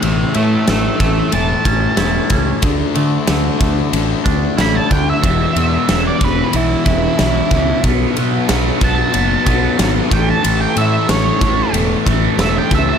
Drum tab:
RD |xxxxxxxx|xxxxxxxx|xxxxxxxx|xxxxxxxx|
SD |--o---o-|--o---o-|--o---o-|--o---o-|
BD |---o-o-o|o--o-o-o|o--o-o-o|o--o-o-o|

RD |xxxxxxxx|
SD |--o---o-|
BD |---o-o-o|